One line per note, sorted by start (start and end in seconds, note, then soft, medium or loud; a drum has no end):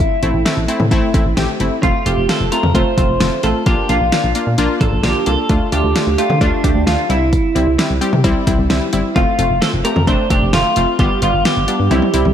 0.00 0.14 A3 medium
0.00 0.14 C4 medium
0.00 0.14 E4 medium
0.00 0.42 E4 medium
0.00 kick loud
0.00 closed hi-hat medium
0.23 0.32 A1 medium
0.23 0.41 A3 medium
0.23 0.41 C4 medium
0.23 0.41 E4 medium
0.23 closed hi-hat medium
0.34 0.43 A1 loud
0.45 0.64 A3 medium
0.45 0.64 C4 medium
0.45 0.64 E4 loud
0.45 snare loud
0.45 closed hi-hat medium
0.57 0.66 A1 loud
0.68 0.87 A3 medium
0.68 0.87 C4 medium
0.68 0.87 E4 loud
0.68 closed hi-hat medium
0.80 0.89 A2 medium
0.80 mid tom medium
0.91 1.01 A1 loud
0.91 1.10 A3 loud
0.91 1.10 C4 loud
0.91 1.10 E4 loud
0.91 kick medium
0.91 closed hi-hat medium
1.14 1.23 A1 medium
1.14 1.33 A3 medium
1.14 1.33 C4 medium
1.14 1.33 E4 loud
1.14 kick medium
1.14 closed hi-hat medium
1.26 1.35 A1 loud
1.37 1.46 A1 loud
1.37 1.56 A3 medium
1.37 1.56 C4 medium
1.37 1.56 G4 loud
1.37 snare loud
1.37 closed hi-hat medium
1.60 1.69 G1 medium
1.60 1.79 A3 medium
1.60 1.79 C4 medium
1.60 1.79 E4 medium
1.60 closed hi-hat medium
1.83 1.92 F1 loud
1.83 2.02 A3 loud
1.83 2.02 C4 medium
1.83 2.02 F4 loud
1.83 2.07 F4 medium
1.83 kick loud
1.83 closed hi-hat medium
2.06 2.15 F1 loud
2.06 2.24 A3 medium
2.06 2.24 C4 medium
2.06 2.24 F4 medium
2.06 2.29 G4 medium
2.06 closed hi-hat medium
2.17 2.27 F1 medium
2.29 2.47 A3 medium
2.29 2.47 C4 medium
2.29 2.47 F4 medium
2.29 2.51 A4 loud
2.29 snare loud
2.29 closed hi-hat medium
2.40 2.50 F1 loud
2.52 2.70 A3 medium
2.52 2.70 C4 medium
2.52 2.70 F4 medium
2.52 2.73 A#4 medium
2.52 closed hi-hat medium
2.63 2.72 F2 medium
2.63 mid tom medium
2.75 2.84 F1 loud
2.75 2.93 A3 loud
2.75 2.93 C4 medium
2.75 2.93 F4 loud
2.75 3.43 C5 loud
2.75 kick medium
2.75 closed hi-hat medium
2.98 3.07 F1 loud
2.98 3.16 A3 medium
2.98 3.16 C4 medium
2.98 3.16 F4 medium
2.98 kick medium
2.98 closed hi-hat medium
3.09 3.18 F1 medium
3.20 3.30 F1 loud
3.20 3.39 A3 medium
3.20 3.39 C4 medium
3.20 3.39 F4 medium
3.20 snare loud
3.20 closed hi-hat medium
3.43 3.53 A1 medium
3.43 3.62 A3 medium
3.43 3.62 C4 medium
3.43 3.62 F4 medium
3.43 3.66 A4 medium
3.43 closed hi-hat medium
3.66 3.75 A#1 loud
3.66 3.85 A#3 loud
3.66 3.85 D4 medium
3.66 3.85 F4 loud
3.66 3.90 G4 medium
3.66 kick loud
3.66 closed hi-hat medium
3.89 3.99 A#1 loud
3.89 4.08 A#3 medium
3.89 4.08 D4 medium
3.89 4.32 F4 medium
3.89 4.08 F4 medium
3.89 closed hi-hat medium
4.01 4.10 A#1 medium
4.12 4.31 A#3 medium
4.12 4.31 D4 medium
4.12 4.31 F4 medium
4.12 snare loud
4.12 closed hi-hat medium
4.24 4.33 A#1 loud
4.35 4.54 A#3 medium
4.35 4.54 D4 medium
4.35 4.54 F4 medium
4.35 closed hi-hat medium
4.47 4.56 A#2 medium
4.58 4.67 A#1 loud
4.58 4.77 A#3 loud
4.58 4.77 D4 loud
4.58 4.77 F4 loud
4.58 closed hi-hat medium
4.81 4.90 A#1 loud
4.81 4.99 A#3 medium
4.81 4.99 D4 medium
4.81 4.99 F4 medium
4.81 5.02 A4 loud
4.81 kick medium
4.81 closed hi-hat medium
4.81 mid tom medium
4.93 5.02 A#1 loud
5.03 5.13 A#1 loud
5.03 5.22 A#3 medium
5.03 5.22 D4 medium
5.03 5.22 F4 medium
5.03 5.26 G4 loud
5.03 snare loud
5.03 closed hi-hat medium
5.26 5.36 C2 medium
5.26 5.45 A#3 medium
5.26 5.45 D4 medium
5.26 5.45 F4 medium
5.26 5.72 A4 loud
5.26 closed hi-hat medium
5.49 5.59 D2 loud
5.49 5.68 A3 loud
5.49 5.68 D4 medium
5.49 5.68 F4 loud
5.49 kick loud
5.49 closed hi-hat medium
5.72 5.82 D2 loud
5.72 5.91 A3 medium
5.72 5.91 D4 medium
5.72 5.91 F4 medium
5.72 6.20 G4 loud
5.72 closed hi-hat medium
5.84 5.93 D2 loud
5.96 6.14 A3 medium
5.96 6.14 D4 medium
5.96 6.14 F4 medium
5.96 snare loud
5.96 closed hi-hat medium
6.07 6.16 D2 loud
6.18 6.37 A3 medium
6.18 6.37 D4 medium
6.18 6.40 F4 medium
6.18 6.37 G4 medium
6.18 closed hi-hat medium
6.30 6.39 D3 medium
6.30 mid tom medium
6.41 6.50 D2 loud
6.41 6.59 A3 loud
6.41 6.59 D4 medium
6.41 6.86 D4 medium
6.41 6.60 F4 loud
6.41 kick medium
6.41 closed hi-hat medium
6.64 6.73 D2 loud
6.64 6.82 A3 medium
6.64 6.82 D4 medium
6.64 6.82 G4 medium
6.64 kick loud
6.64 closed hi-hat medium
6.75 6.84 D2 loud
6.87 6.96 D2 loud
6.87 7.05 A3 medium
6.87 7.05 D4 medium
6.87 7.09 F4 medium
6.87 7.05 F4 medium
6.87 snare loud
6.87 closed hi-hat medium
7.09 7.37 C2 loud
7.09 7.47 G3 medium
7.09 7.47 C4 medium
7.09 7.47 E4 medium
7.09 7.75 E4 medium
7.09 closed hi-hat medium
7.33 kick loud
7.33 closed hi-hat medium
7.55 7.65 C2 loud
7.55 7.74 G3 medium
7.55 7.74 C4 medium
7.55 7.74 E4 medium
7.55 closed hi-hat medium
7.67 7.76 C2 medium
7.78 7.97 G3 medium
7.78 7.97 C4 medium
7.78 7.97 E4 loud
7.78 snare loud
7.78 closed hi-hat medium
7.90 7.99 C2 medium
8.01 8.20 G3 medium
8.01 8.20 C4 medium
8.01 8.20 G4 loud
8.01 closed hi-hat medium
8.13 8.22 C3 medium
8.13 mid tom medium
8.24 8.33 C2 loud
8.24 8.43 G3 loud
8.24 8.43 C4 loud
8.24 8.43 E4 loud
8.24 kick loud
8.24 closed hi-hat medium
8.47 8.56 C2 loud
8.47 8.65 G3 medium
8.47 8.65 C4 medium
8.47 8.65 E4 loud
8.47 kick loud
8.47 closed hi-hat medium
8.59 8.68 C2 loud
8.70 8.79 C2 loud
8.70 8.88 G3 loud
8.70 8.88 C4 medium
8.70 8.88 E4 loud
8.70 snare loud
8.70 closed hi-hat medium
8.93 9.02 G1 medium
8.93 9.11 G3 medium
8.93 9.11 C4 medium
8.93 9.11 E4 loud
8.93 closed hi-hat medium
9.16 9.25 F1 loud
9.16 9.34 A3 loud
9.16 9.34 C4 medium
9.16 9.34 F4 loud
9.16 9.63 F4 medium
9.16 kick loud
9.16 closed hi-hat medium
9.39 9.48 F1 loud
9.39 9.57 A3 medium
9.39 9.57 C4 medium
9.39 9.57 F4 medium
9.39 closed hi-hat medium
9.50 9.59 F1 medium
9.62 9.80 A3 medium
9.62 9.80 C4 medium
9.62 9.80 F4 medium
9.62 9.68 A4 loud
9.62 snare loud
9.62 closed hi-hat medium
9.73 9.83 F1 loud
9.85 10.03 A3 medium
9.85 10.03 C4 medium
9.85 10.03 G4 medium
9.85 10.06 A#4 loud
9.85 closed hi-hat medium
9.96 10.05 F2 loud
9.96 mid tom medium
10.07 10.17 F1 loud
10.07 10.26 A3 loud
10.07 10.26 C4 medium
10.07 10.26 D4 loud
10.07 10.30 C5 loud
10.07 kick medium
10.07 closed hi-hat medium
10.30 10.40 F1 loud
10.30 10.49 A3 medium
10.30 10.49 C4 medium
10.30 10.49 D4 medium
10.30 10.53 G4 medium
10.30 kick loud
10.30 closed hi-hat medium
10.42 10.51 F1 loud
10.53 10.63 F1 loud
10.53 10.72 A3 medium
10.53 10.72 C4 medium
10.53 10.72 F4 medium
10.53 10.99 F4 medium
10.53 snare loud
10.53 closed hi-hat medium
10.76 10.86 F1 medium
10.76 10.95 A3 medium
10.76 10.95 C4 medium
10.76 10.95 F4 medium
10.76 closed hi-hat medium
10.99 11.08 G1 loud
10.99 11.18 G3 loud
10.99 11.18 B3 medium
10.99 11.18 F4 loud
10.99 11.22 G4 medium
10.99 kick loud
10.99 closed hi-hat medium
11.22 11.31 G1 loud
11.22 11.41 G3 medium
11.22 11.41 B3 medium
11.22 11.41 F4 medium
11.22 11.44 F4 medium
11.22 closed hi-hat medium
11.34 11.43 G1 medium
11.45 11.63 G3 medium
11.45 11.64 B3 medium
11.45 11.63 F4 medium
11.45 12.33 G4 medium
11.45 snare loud
11.45 closed hi-hat medium
11.57 11.66 G1 loud
11.68 11.86 G3 medium
11.68 11.86 B3 medium
11.68 11.86 D4 medium
11.68 closed hi-hat medium
11.80 11.89 G2 medium
11.91 12.00 C2 loud
11.91 12.09 G3 loud
11.91 12.09 C4 medium
11.91 12.09 E4 loud
11.91 closed hi-hat medium
11.91 high tom medium
12.02 high tom medium
12.14 12.23 C2 medium
12.14 12.32 G3 medium
12.14 12.32 C4 medium
12.14 12.32 E4 loud
12.14 closed hi-hat medium
12.25 12.34 C2 medium
12.25 mid tom medium